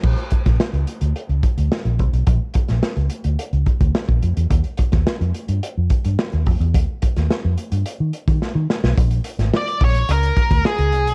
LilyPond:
<<
  \new Staff \with { instrumentName = "Lead electric guitar" } { \time 4/4 \key ees \major \tempo 4 = 107 r1 | r1 | r1 | r1 |
r4 d''8 des''8 bes'4 aes'4 | }
  \new Staff \with { instrumentName = "Fingered electric bass" } { \clef bass \time 4/4 \key ees \major bes,,16 r8 bes,,16 r16 des,16 r16 d,16 r16 des,16 r16 d,16 r16 bes,,16 c,16 ces,16 | bes,,16 r8 bes,,16 r16 des,16 r16 d,16 r16 des,16 r16 d,16 r16 bes,,16 f,16 e,16 | ees,16 r8 ees,16 r16 f,16 r16 g,16 r16 f,16 r16 g,16 r16 ees,16 f,16 e,16 | ees,16 r8 ees,16 r16 f,16 r16 g,16 r16 ees16 r16 ees16 r16 ees16 r16 ces,16 |
bes,,8 r16 aes,,16 r8 bes,,8 des,8 r16 d,16 r16 des,16 c,16 ces,16 | }
  \new DrumStaff \with { instrumentName = "Drums" } \drummode { \time 4/4 <cymc bd>16 hh16 <hh bd>16 <hh bd sn>16 sn16 hh16 hh16 hh16 hh16 hh16 <hh bd>16 hh16 sn16 hh16 <hh bd>16 hh16 | <hh bd>8 <hh bd>16 <hh sn>16 sn16 hh16 hh16 hh16 hh16 hh16 <hh bd>16 <hh bd>16 sn16 <hh bd>16 hh16 hh16 | <hh bd>16 hh16 <hh bd>16 <hh bd sn>16 sn16 hh16 hh16 hh16 hh8 <hh bd>16 hh16 sn16 hh16 <hho bd>16 hh16 | <hh bd>8 <hh bd>16 <hh sn>16 sn8 hh16 hh16 hh8 hh16 <hh bd>16 sn8 sn16 sn16 |
<hh bd>16 hh16 hh16 <hh sn>16 sn16 hh16 <hho bd>16 hh16 hh16 hh16 <hh bd>16 <hh bd>16 sn16 hh16 hh16 hh16 | }
>>